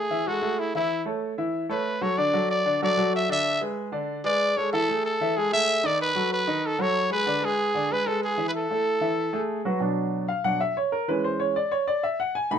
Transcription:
0.00 0.29 G#4 medium
0.10 0.24 E3 medium
0.10 0.24 E4 medium
0.10 0.24 E5 medium
0.27 0.40 G#3 medium
0.27 0.61 F#4 medium
0.27 0.40 G#4 medium
0.27 0.40 A4 medium
0.42 0.69 A3 medium
0.42 0.69 G#4 medium
0.42 0.69 A4 medium
0.59 0.75 E4 medium
0.75 1.01 E3 medium
0.75 1.01 E4 medium
0.75 1.05 E4 medium
0.75 1.01 E5 medium
1.06 1.32 A3 medium
1.06 1.32 A4 medium
1.06 1.32 C#5 medium
1.38 1.64 E3 medium
1.38 1.64 E4 medium
1.38 1.64 E5 medium
1.69 1.96 A3 medium
1.69 1.96 A4 medium
1.69 2.04 B4 medium
1.69 1.96 C#5 medium
2.01 2.15 F#3 medium
2.01 2.15 F#4 medium
2.01 2.15 A4 medium
2.01 2.19 C#5 medium
2.17 2.31 D3 medium
2.17 2.31 D4 medium
2.17 2.31 D5 medium
2.17 2.50 D5 medium
2.34 2.60 F#3 medium
2.34 2.60 F#4 medium
2.34 2.60 A4 medium
2.51 2.80 D5 medium
2.65 2.79 D3 medium
2.65 2.79 D4 medium
2.65 2.79 D5 medium
2.82 2.95 F#3 medium
2.82 2.95 F#4 medium
2.82 2.95 A4 medium
2.82 3.12 D5 loud
2.97 3.24 F#3 medium
2.97 3.24 F#4 medium
2.97 3.24 A4 medium
3.16 3.30 E5 loud
3.29 3.55 D3 medium
3.29 3.55 D4 medium
3.29 3.56 D5 medium
3.29 3.61 E5 medium
3.61 3.87 G#3 medium
3.61 3.87 G#4 medium
3.61 3.88 B4 medium
3.92 4.19 D3 medium
3.92 4.19 D4 medium
3.92 4.19 D5 medium
4.24 4.51 G#3 medium
4.24 4.51 G#4 medium
4.24 4.51 B4 medium
4.24 4.59 D5 loud
4.57 4.70 G#3 medium
4.57 4.70 G#4 medium
4.57 4.70 A4 medium
4.57 4.72 C#5 medium
4.73 4.86 E3 medium
4.73 4.86 E4 medium
4.73 5.02 A4 medium
4.73 4.86 E5 medium
4.89 5.15 A3 medium
4.89 5.15 G#4 medium
4.89 5.15 A4 medium
5.05 5.39 A4 medium
5.21 5.34 E3 medium
5.21 5.34 E4 medium
5.21 5.34 E5 medium
5.37 5.50 G#3 medium
5.37 5.50 G#4 medium
5.37 5.53 G#4 medium
5.37 5.50 A4 medium
5.52 5.78 A3 medium
5.52 5.79 G#4 medium
5.52 5.79 A4 medium
5.52 5.88 E5 loud
5.83 6.10 D#3 medium
5.83 6.10 D#4 medium
5.83 6.01 D5 medium
5.83 6.10 D#5 medium
6.02 6.30 B4 loud
6.15 6.42 F#3 medium
6.15 6.42 F#4 medium
6.15 6.42 A4 medium
6.33 6.68 B4 medium
6.47 6.73 D#3 medium
6.47 6.74 D#4 medium
6.47 6.74 D#5 medium
6.66 6.83 A4 medium
6.79 7.05 F#3 medium
6.79 7.05 F#4 medium
6.79 7.06 A4 medium
6.79 7.12 C#5 loud
7.10 7.24 G#3 medium
7.10 7.24 G#4 medium
7.10 7.24 B4 medium
7.10 7.46 B4 medium
7.26 7.40 D3 medium
7.26 7.40 D4 medium
7.26 7.40 D5 medium
7.42 7.68 G#3 medium
7.42 7.68 G#4 medium
7.42 7.94 G#4 medium
7.42 7.69 B4 medium
7.75 7.88 D3 medium
7.75 7.88 D4 medium
7.75 7.88 D5 medium
7.91 8.04 G#3 medium
7.91 8.04 G#4 medium
7.91 8.04 B4 medium
7.91 8.09 B4 medium
8.06 8.32 G#3 medium
8.06 8.32 G#4 medium
8.06 8.23 A4 medium
8.06 8.33 B4 medium
8.24 8.45 G#4 medium
8.37 8.64 E3 medium
8.37 8.64 E4 medium
8.37 8.64 E5 medium
8.49 8.52 B4 medium
8.57 9.47 A4 medium
8.71 8.96 A3 medium
8.71 8.97 E4 medium
8.71 8.97 A4 medium
9.01 9.27 E3 medium
9.01 9.28 E4 medium
9.01 9.28 E5 medium
9.33 9.59 A3 medium
9.33 9.59 G#4 medium
9.33 9.59 A4 medium
9.65 9.78 F#3 medium
9.65 9.78 F#4 medium
9.65 9.79 B4 medium
9.80 10.26 B2 medium
9.80 10.26 F#3 soft
9.80 10.27 D4 medium
10.28 10.44 F5 medium
10.44 10.59 B2 soft
10.44 10.59 F#3 soft
10.44 10.59 D4 medium
10.44 10.60 F#5 medium
10.61 10.76 E5 medium
10.77 10.92 C#5 medium
10.92 11.08 A#4 medium
11.08 11.53 E3 medium
11.08 11.54 G#3 soft
11.08 11.54 C#4 medium
11.08 11.24 B4 medium
11.24 11.40 C5 medium
11.40 11.55 C#5 medium
11.56 11.71 D5 medium
11.72 11.87 C#5 medium
11.88 12.03 D5 medium
12.03 12.19 E5 medium
12.20 12.35 F#5 medium
12.35 12.51 G#5 medium
12.51 12.59 B2 soft
12.51 12.59 A3 soft
12.51 12.59 D#4 medium
12.51 12.59 B5 medium

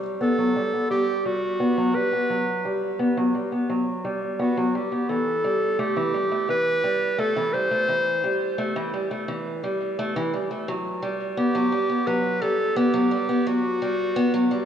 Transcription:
0.00 0.19 G3 medium
0.21 0.37 B3 medium
0.21 0.87 A4 medium
0.38 0.54 F#3 medium
0.56 0.72 G3 medium
0.73 0.89 B3 medium
0.90 1.24 G3 medium
0.90 1.27 G4 loud
1.25 1.59 G3 medium
1.25 1.97 F#4 medium
1.60 1.76 B3 medium
1.78 1.93 F#3 loud
1.95 2.11 G3 medium
1.95 3.00 B4 loud
2.13 2.29 B3 medium
2.30 2.63 F#3 medium
2.65 2.98 G3 medium
2.99 3.15 B3 medium
3.17 3.33 F#3 medium
3.35 3.50 G3 medium
3.52 3.68 B3 medium
3.69 4.03 F#3 medium
4.05 4.38 G3 medium
4.39 4.55 B3 medium
4.39 4.76 F#4 medium
4.57 4.73 F#3 medium
4.75 4.90 G3 medium
4.75 5.11 G4 medium
4.92 5.08 B3 medium
5.09 5.42 E3 medium
5.09 5.81 A4 medium
5.44 5.77 G3 medium
5.79 5.95 A3 loud
5.79 6.49 G4 medium
5.96 6.12 E3 medium
6.14 6.30 G3 medium
6.32 6.47 A3 medium
6.49 6.82 E3 medium
6.49 7.21 B4 loud
6.84 7.17 G3 medium
7.18 7.34 A3 medium
7.18 7.55 A4 loud
7.36 7.52 E3 medium
7.53 7.69 G3 medium
7.53 8.93 C5 loud
7.71 7.87 A3 medium
7.88 8.22 E3 medium
8.24 8.57 G3 medium
8.58 8.74 A3 medium
8.76 8.92 E3 medium
8.94 9.09 G3 medium
9.11 9.26 A3 medium
9.28 9.61 E3 medium
9.64 9.96 G3 medium
9.99 10.14 A3 medium
10.16 10.31 E3 medium
10.34 10.49 G3 medium
10.51 10.66 A3 medium
10.68 11.01 F#3 medium
11.02 11.36 G3 medium
11.37 11.53 B3 medium
11.37 12.08 G4 medium
11.55 11.70 F#3 medium
11.72 11.88 G3 medium
11.90 12.05 B3 medium
12.07 12.40 F#3 medium
12.07 12.43 B4 loud
12.42 12.75 G3 medium
12.42 12.78 A4 medium
12.76 12.92 B3 loud
12.76 13.49 G4 medium
12.94 13.10 F#3 medium
13.11 13.27 G3 medium
13.29 13.45 B3 medium
13.47 13.80 F#3 medium
13.47 14.65 F#4 medium
13.82 14.15 G3 medium
14.16 14.32 B3 medium
14.34 14.50 F#3 medium
14.51 14.65 G3 medium

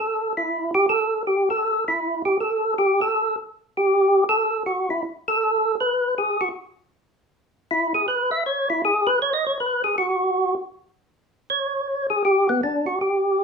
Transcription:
0.00 0.33 A4 medium
0.37 0.71 E4 medium
0.75 0.86 G4 medium
0.89 1.23 A4 medium
1.27 1.49 G4 medium
1.50 1.84 A4 medium
1.88 2.22 E4 medium
2.25 2.38 G4 medium
2.40 2.74 A4 medium
2.78 3.00 G4 medium
3.01 3.36 A4 medium
3.77 4.24 G4 medium
4.29 4.63 A4 medium
4.66 4.89 F#4 medium
4.90 5.03 E4 medium
5.28 5.75 A4 medium
5.80 6.15 B4 medium
6.18 6.41 G#4 medium
6.41 6.49 F#4 medium
7.71 7.93 E4 medium
7.95 8.06 G#4 medium
8.08 8.30 B4 medium
8.31 8.44 E5 loud
8.46 8.69 C#5 medium
8.70 8.82 E4 medium
8.85 9.07 G#4 medium
9.07 9.19 B4 medium
9.22 9.33 C#5 medium
9.33 9.45 D#5 loud
9.47 9.58 C#5 medium
9.60 9.82 B4 medium
9.84 9.96 G#4 medium
9.98 10.55 F#4 medium
11.50 12.07 C#5 medium
12.10 12.23 G#4 medium
12.25 12.47 G4 medium
12.49 12.61 B3 medium
12.63 12.86 D4 medium
12.86 12.99 F#4 medium
13.01 13.44 G4 medium

